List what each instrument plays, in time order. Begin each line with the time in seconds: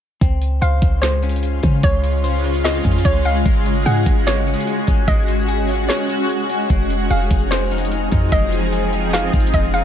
0.21 808-style bass C#2, ambient pad C#3 G#3 F4, clean electric guitar C4, synth texture C#4 F5 C6, kick, closed hi-hat
0.42 closed hi-hat
0.61 808-style bass C#2, clean electric guitar C5, synth pluck F5, closed hi-hat
0.82 808-style bass C#2, kick, closed hi-hat
1.02 clean electric guitar G#3, synth pluck C5, snare, closed hi-hat
1.23 clean electric guitar C#4, closed hi-hat
1.29 closed hi-hat
1.36 closed hi-hat
1.43 closed hi-hat
1.63 808-style bass C#3, clean electric guitar C#4, kick, closed hi-hat
1.83 808-style bass C#2, synth pluck C#5, kick, closed hi-hat
2.04 closed hi-hat
2.24 clean electric guitar C5, closed hi-hat
2.44 closed hi-hat
2.64 clean electric guitar C4, synth pluck D#5, snare, closed hi-hat
2.84 808-style bass F2, clean electric guitar C#4, kick, closed hi-hat
2.92 closed hi-hat
2.98 closed hi-hat
3.05 808-style bass C#2, synth pluck C#5, kick, closed hi-hat
3.25 clean electric guitar C#4, synth pluck F5, closed hi-hat
3.45 808-style bass G#1, clean electric guitar G#3, synth texture C#4 G#4 F#5, ambient pad C#4 F#4, kick, closed hi-hat
3.66 closed hi-hat
3.86 808-style bass G#2, clean electric guitar G#4, synth pluck F#5, closed hi-hat
4.06 808-style bass G#1, kick, closed hi-hat
4.27 clean electric guitar G#3, synth pluck C#5, snare, closed hi-hat
4.47 clean electric guitar C#4, closed hi-hat
4.54 closed hi-hat
4.60 closed hi-hat
4.67 closed hi-hat
4.87 808-style bass G#1, clean electric guitar C#4, kick, closed hi-hat
5.08 808-style bass G#1, clean electric guitar G#3, synth pluck D#5, kick, closed hi-hat
5.28 closed hi-hat
5.48 clean electric guitar G#4, closed hi-hat
5.69 open hi-hat
5.88 clean electric guitar G#3, synth pluck C#5, snare, closed hi-hat
6.08 clean electric guitar C#4, closed hi-hat
6.29 closed hi-hat
6.49 clean electric guitar C#4, closed hi-hat
6.70 808-style bass F1, ambient pad F3 C4 D#4 G#4, clean electric guitar G#3, synth texture D#4 F6, kick, closed hi-hat
6.90 closed hi-hat
7.10 808-style bass F1, clean electric guitar G#4, synth pluck F5, closed hi-hat
7.31 808-style bass F1, kick, closed hi-hat
7.51 clean electric guitar G#3, synth pluck C5, snare, closed hi-hat
7.71 clean electric guitar D#4, closed hi-hat
7.78 closed hi-hat
7.85 closed hi-hat
7.92 closed hi-hat
8.12 808-style bass F2, clean electric guitar D#4, kick, closed hi-hat
8.32 808-style bass F1, clean electric guitar G#3, synth pluck D#5, kick, closed hi-hat
8.52 closed hi-hat
8.72 clean electric guitar G#4, closed hi-hat
8.93 closed hi-hat
9.13 clean electric guitar G#3, synth pluck F5, snare, closed hi-hat
9.33 808-style bass G#1, clean electric guitar D#4, kick, closed hi-hat
9.40 closed hi-hat
9.47 closed hi-hat
9.54 808-style bass F1, synth pluck D#5, kick, closed hi-hat
9.74 clean electric guitar D#4, synth pluck F5, closed hi-hat